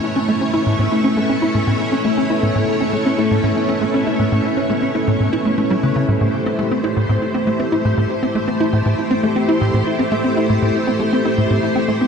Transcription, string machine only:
\new Staff \with { instrumentName = "String machine" } { \time 4/4 \key a \mixolydian \tempo 4 = 119 <a cis' e' cis''>1~ | <a cis' e' cis''>1~ | <a cis' e' cis''>1 | \key a \minor <a e' g' c''>1~ |
<a e' g' c''>1~ | <a e' g' c''>1 | }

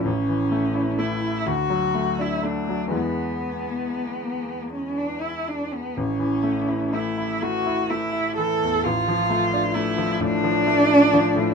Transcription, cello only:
\new Staff \with { instrumentName = "Cello" } { \time 6/8 \key a \major \tempo 4. = 41 cis'4 e'8 fis'8. e'16 d'8 | b4.~ b16 cis'16 d'16 e'16 d'16 b16 | cis'4 e'8 fis'8 e'8 a'8 | f'4 e'8 d'4. | }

